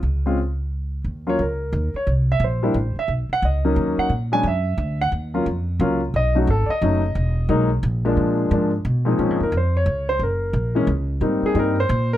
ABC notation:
X:1
M:3/4
L:1/8
Q:"Swing" 1/4=177
K:Db
V:1 name="Grand piano"
z6 | [K:Ebm] z d B3 d | z =e =c3 e | z ^f ^d3 f |
z a _f3 ^f | z6 | ^d ^F =A [=d^d]3- | [=d^d]2 z4 |
z6 | [K:Bbm] z B c d2 c | B3 z3 | z A B c2 B |]
V:2 name="Grand piano"
z [A,CDF] z4 | [K:Ebm] z [G,B,DF] z4 | z3 [=G,B,=D=E] z2 | z3 [^F,^A,D^D]3 |
z [^F,A,^C=D] z4 | z [G,B,DF] z2 [G,B,DF] z | z [^F,=A,^C^D] z2 [F,A,CD] z | z2 [^F,^G,^A,^D] z2 [=F,G,A,=D]- |
[F,^G,^A,=D]2 [F,_A,B,D] z2 [B,,F,A,=CE] | [K:Bbm] [F,A,CD] z4 z | z3 [_F,A,B,D] z2 | [=G,B,CE]2 [G,B,CE] z3 |]
V:3 name="Upright bass" clef=bass
D,,6 | [K:Ebm] E,,2 D,,2 E,, z | =C,,2 B,,,2 =A,,, z | =B,,, z D,,2 ^D,, z |
B,,2 ^F,,2 =D,,2 | E,,2 F,,2 D,,2 | =B,,,2 A,,, z ^F,,,2 | =E,,,2 =B,,,2 ^A,,,2 |
B,,2 A,,2 C,2 | [K:Bbm] (3B,, A,, F,, F,,2 D,,2 | G,,,2 B,,,2 D,,2 | A,, z =G,,2 B,,2 |]